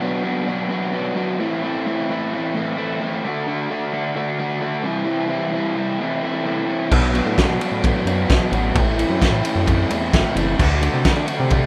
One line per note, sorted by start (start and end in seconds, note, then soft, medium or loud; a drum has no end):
0.01 0.22 B2 medium
0.01 0.23 F#3 medium
0.01 0.23 B3 loud
0.01 0.24 D4 loud
0.01 0.24 F#4 loud
0.23 0.46 B2 medium
0.23 0.46 F#3 medium
0.23 0.46 B3 medium
0.23 0.47 D4 medium
0.23 0.47 F#4 medium
0.47 0.68 B2 medium
0.47 0.68 F#3 medium
0.47 0.69 B3 medium
0.47 0.69 D4 medium
0.47 0.70 F#4 medium
0.69 0.91 B2 loud
0.69 0.92 F#3 loud
0.69 0.92 B3 loud
0.69 0.93 D4 loud
0.69 0.94 F#4 loud
0.93 1.14 B2 medium
0.93 1.15 F#3 medium
0.93 1.15 B3 medium
0.93 1.16 D4 medium
0.93 1.16 F#4 medium
1.15 1.38 B2 medium
1.15 1.38 F#3 medium
1.15 1.38 B3 loud
1.15 1.39 D4 loud
1.15 1.39 F#4 medium
1.39 1.61 A2 loud
1.39 1.61 E3 loud
1.39 1.63 A3 loud
1.39 1.63 C4 loud
1.39 1.63 E4 loud
1.62 1.85 A2 medium
1.62 1.85 E3 medium
1.62 1.86 A3 loud
1.62 1.85 C4 loud
1.62 1.86 E4 loud
1.86 2.08 A2 medium
1.86 2.08 E3 loud
1.86 2.09 A3 medium
1.86 2.10 C4 loud
1.86 2.09 E4 loud
2.09 2.32 A2 medium
2.09 2.32 E3 medium
2.09 2.32 A3 medium
2.09 2.33 C4 medium
2.09 2.33 E4 medium
2.33 2.53 A2 medium
2.33 2.54 E3 medium
2.33 2.55 A3 medium
2.33 2.55 C4 medium
2.33 2.55 E4 medium
2.54 2.75 A2 loud
2.54 2.76 E3 loud
2.54 2.76 A3 loud
2.54 2.77 C4 loud
2.54 2.77 E4 loud
2.77 2.99 A2 medium
2.77 3.00 E3 medium
2.77 3.00 A3 medium
2.77 3.00 C4 loud
2.77 3.01 E4 medium
3.00 3.22 A2 medium
3.00 3.23 E3 medium
3.00 3.23 A3 medium
3.00 3.23 C4 loud
3.00 3.23 E4 medium
3.24 3.46 D3 loud
3.24 3.47 A3 loud
3.24 3.47 D4 loud
3.24 3.47 F#4 loud
3.47 3.69 D3 medium
3.47 3.70 A3 medium
3.47 3.70 D4 medium
3.47 3.70 F#4 loud
3.70 3.91 D3 medium
3.70 3.92 A3 loud
3.70 3.93 D4 loud
3.70 3.93 F#4 loud
3.92 4.14 D3 medium
3.92 4.15 A3 medium
3.92 4.15 D4 medium
3.92 4.15 F#4 medium
4.15 4.37 D3 medium
4.15 4.38 A3 medium
4.15 4.39 D4 medium
4.15 4.39 F#4 medium
4.39 4.60 D3 loud
4.39 4.60 A3 loud
4.39 4.61 D4 loud
4.39 4.61 F#4 loud
4.61 4.83 D3 medium
4.61 4.83 A3 loud
4.61 4.84 D4 medium
4.61 4.84 F#4 loud
4.84 5.05 C3 loud
4.84 5.05 E3 loud
4.84 5.05 G3 loud
4.84 5.06 C4 loud
4.84 5.07 E4 loud
5.06 5.28 C3 loud
5.06 5.28 E3 loud
5.06 5.28 G3 loud
5.06 5.29 C4 loud
5.06 5.29 E4 loud
5.29 5.51 C3 medium
5.29 5.51 E3 medium
5.29 5.53 G3 medium
5.29 5.53 C4 loud
5.29 5.53 E4 loud
5.52 5.74 C3 medium
5.52 5.75 E3 medium
5.52 5.75 G3 medium
5.52 5.76 C4 loud
5.52 5.76 E4 loud
5.75 5.98 C3 medium
5.75 5.98 E3 medium
5.75 5.98 G3 medium
5.75 5.99 C4 medium
5.75 5.99 E4 medium
6.00 6.21 C3 medium
6.00 6.22 E3 medium
6.00 6.23 A3 medium
6.00 6.23 C4 medium
6.00 6.23 E4 medium
6.23 6.43 C3 loud
6.23 6.44 E3 loud
6.23 6.44 A3 loud
6.23 6.45 C4 loud
6.23 6.45 E4 loud
6.45 6.66 C3 medium
6.45 6.67 E3 medium
6.45 6.67 A3 loud
6.45 6.68 C4 loud
6.45 6.69 E4 medium
6.68 6.90 C3 medium
6.68 6.90 E3 medium
6.68 6.90 A3 medium
6.68 6.91 C4 medium
6.68 6.91 E4 medium
6.91 7.22 B1 loud
6.91 7.13 B2 loud
6.91 7.13 F#3 medium
6.91 7.13 B3 loud
6.91 7.14 D4 loud
6.91 7.15 F#4 loud
6.91 kick loud
6.91 crash loud
7.14 7.35 B2 medium
7.14 7.35 F#3 medium
7.14 7.36 B3 loud
7.14 7.36 D4 medium
7.14 7.37 F#4 medium
7.14 ride medium
7.26 7.36 A2 medium
7.37 7.59 B2 loud
7.37 7.60 F#3 loud
7.37 7.61 B3 loud
7.37 7.61 D4 loud
7.37 7.61 F#4 loud
7.37 kick loud
7.37 snare loud
7.37 ride medium
7.49 7.59 B2 medium
7.61 7.82 B2 medium
7.61 7.83 F#3 medium
7.61 7.83 B3 medium
7.61 7.83 D4 medium
7.61 7.84 F#4 medium
7.61 ride medium
7.72 8.02 A2 loud
7.83 8.06 B2 medium
7.83 8.06 F#3 medium
7.83 8.07 B3 medium
7.83 8.07 D4 medium
7.83 8.08 F#4 medium
7.83 kick loud
7.83 ride loud
8.05 8.26 F#2 medium
8.05 8.28 B2 loud
8.05 8.28 F#3 loud
8.05 8.29 B3 loud
8.05 8.29 D4 loud
8.05 8.30 F#4 loud
8.05 ride medium
8.30 8.40 B1 medium
8.30 8.51 B2 medium
8.30 8.51 F#3 medium
8.30 8.52 B3 medium
8.30 8.52 D4 medium
8.30 8.53 F#4 loud
8.30 kick loud
8.30 snare loud
8.30 ride loud
8.52 8.72 A1 loud
8.52 8.74 B2 medium
8.52 8.74 F#3 medium
8.52 8.75 B3 loud
8.52 8.75 D4 medium
8.52 8.75 F#4 loud
8.52 ride medium
8.75 9.05 A1 loud
8.75 8.97 A2 loud
8.75 8.98 E3 loud
8.75 8.98 A3 loud
8.75 8.98 C4 loud
8.75 8.99 E4 loud
8.75 kick loud
8.75 ride loud
8.98 9.19 A2 medium
8.98 9.20 E3 medium
8.98 9.21 A3 medium
8.98 9.21 C4 medium
8.98 9.21 E4 loud
8.98 ride medium
9.10 9.20 F#2 loud
9.21 9.42 A2 loud
9.21 9.43 E3 medium
9.21 9.43 A3 loud
9.21 9.44 C4 loud
9.21 9.44 E4 loud
9.21 kick loud
9.21 snare loud
9.21 ride loud
9.32 9.42 A2 medium
9.44 9.65 A2 medium
9.44 9.65 E3 medium
9.44 9.66 A3 medium
9.44 9.66 C4 medium
9.44 9.66 E4 medium
9.44 ride medium
9.55 9.86 F#2 loud
9.66 9.89 A2 medium
9.66 9.89 E3 medium
9.66 9.89 A3 medium
9.66 9.90 C4 medium
9.66 9.90 E4 medium
9.66 kick loud
9.66 ride loud
9.90 10.11 E2 medium
9.90 10.11 A2 loud
9.90 10.11 E3 loud
9.90 10.12 A3 loud
9.90 10.12 C4 loud
9.90 10.13 E4 loud
9.90 ride medium
10.12 10.24 A1 loud
10.12 10.33 A2 medium
10.12 10.34 E3 medium
10.12 10.35 A3 loud
10.12 10.35 C4 medium
10.12 10.35 E4 loud
10.12 kick loud
10.12 snare loud
10.12 ride loud
10.35 10.56 F#1 loud
10.35 10.57 A2 medium
10.35 10.57 E3 loud
10.35 10.56 A3 medium
10.35 10.58 C4 loud
10.35 10.58 E4 loud
10.35 ride medium
10.57 10.89 D2 loud
10.57 10.80 D3 loud
10.57 10.81 A3 loud
10.57 10.81 D4 loud
10.57 10.82 F#4 loud
10.57 kick loud
10.57 crash loud
10.81 11.03 D3 medium
10.81 11.03 A3 medium
10.81 11.03 D4 medium
10.81 11.04 F#4 loud
10.81 ride medium
10.93 11.04 C3 medium
11.04 11.25 D3 loud
11.04 11.26 A3 loud
11.04 11.27 D4 loud
11.04 11.27 F#4 loud
11.04 kick loud
11.04 snare loud
11.04 ride loud
11.16 11.27 D3 medium
11.27 11.49 D3 medium
11.27 11.49 A3 medium
11.27 11.49 D4 medium
11.27 11.50 F#4 medium
11.27 ride medium
11.40 11.66 C3 loud
11.50 11.66 D3 medium
11.50 11.66 A3 medium
11.50 11.66 D4 medium
11.50 11.66 F#4 medium
11.50 kick loud
11.50 ride loud